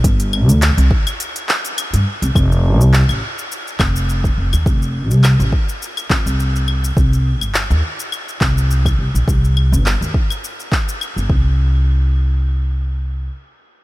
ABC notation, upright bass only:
X:1
M:4/4
L:1/16
Q:"Swing 16ths" 1/4=104
K:Cdor
V:1 name="Upright bass" clef=bass
G,,,3 D,,2 C,, z6 z G,, z C,, | F,,,3 C,,2 A,,, z4 F,,,4 F,,, E,, | F,,,3 C,,2 A,,, z4 F,, C,,4- C,, | C,,3 G,,,2 E,, z4 C,,4 C,, B,,, |
C,,3 G,,,2 E,, z6 z G,,, C,,2- | C,,12 z4 |]